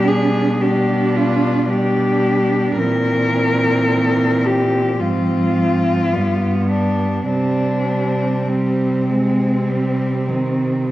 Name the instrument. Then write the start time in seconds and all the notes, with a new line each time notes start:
cello
Already playing: B2 G3 D4
0.08 G#4
0.61 G3 D4 G4
1.16 F4
1.70 G3 D4 G4
2.78 A#2 E3 C4 A#4
4.46 G4
5.00 G#2 F3 C4 F4
6.13 G2 G3 B3
6.71 D4
7.29 C3 G3 C4 D4
8.48 G3 C4
9.09 G#3
9.69 G3
10.28 D#3
10.87 F3